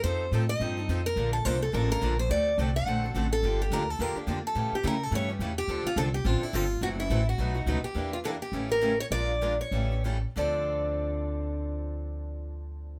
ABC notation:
X:1
M:4/4
L:1/8
Q:"Swing" 1/4=212
K:Dm
V:1 name="Steel-string acoustic guitar"
c2 z _e4 B- | B A c A B B2 c | d2 z ^f4 A- | A G B A B z2 A- |
A G B A ^c z2 G- | G F A G F E F2 | ^F E2 F4 G- | G F A G2 B2 ^c |
d3 ^c3 z2 | d8- | d8 |]
V:2 name="Steel-string acoustic guitar"
[F,C_EA] z [F,CEA] z [F,CEA] [CEA] [F,CEA] z | [D,F,B,DA] z [D,F,B,DA] z [D,F,B,DA] [B,DA] [D,F,B,DA] z | [D,A,C^FA] z [D,A,CFA] z [D,A,CFA] [CFA] [D,A,CFA] z | [D,F,B,DG] z [D,F,B,DG] z [D,F,B,DG] [B,DG] [D,F,B,DG] z |
[^C,E,A,^CG] z [C,E,A,CG] z [C,E,A,CG] [A,CG] [C,E,A,CG] z | [D,F,CDA] z [D,F,CDA] z [D,F,CDA] [CDA] [D,F,CDA] z | [C,E,A,E^F] z [C,E,A,EF] z [=B,,^F,A,^DF] [A,DF] [B,,F,A,DF] z | [E,B,DG] z [E,B,DG] z [^C,E,A,^CG] [A,CG] [C,E,A,CG] z |
[F,_A,DFB] z [F,A,DFB] z [^C,E,=A,^CG] [A,CG] [C,E,A,CG] z | [D,F,CDA]8- | [D,F,CDA]8 |]
V:3 name="Steel-string acoustic guitar"
[F,C_EA] z [F,CEA] z [F,CEA] z [F,CEA] z | [D,F,B,DA] z [D,F,B,DA] z [D,F,B,DA] z [D,F,B,DA] z | [D,A,C^FA] z [D,A,CFA] z [D,A,CFA] z [D,A,CFA] z | [D,F,B,DG] z [D,F,B,DG] z [D,F,B,DG] z [D,F,B,DG] z |
[E,G,^CEA] z [E,G,CEA] z [E,G,CEA] z [E,G,CEA] z | [D,F,CDA] z [D,F,CDA] z [D,F,CDA] z [D,F,CDA] z | [^F,CEA] z [F,CEA] z [=B,,F,A,^D^F=B] z [B,,F,A,DFB] z | [E,G,DEB] z [E,G,DEB] z [E,G,^CEA] z [E,G,CEA] z |
[F,_A,DFB] z [F,A,DFB] z [E,G,^CE=A] z [E,G,CEA] z | [D,F,CDA]8- | [D,F,CDA]8 |]
V:4 name="Upright bass" clef=bass
F,,2 A,,2 G,,2 F,,2 | B,,,2 C,,2 A,,,2 B,,,2 | D,,2 C,,2 B,,,2 A,,,2 | G,,,2 D,,2 E,, z F,,2 |
A,, z ^C,2 G,,2 E,,2 | D,, z C,,2 A,,, z G,,,2 | ^F,,,2 A,,,2 =B,,,2 ^C,, z | E,,4 A,,,4 |
B,,,4 A,,,4 | D,,8- | D,,8 |]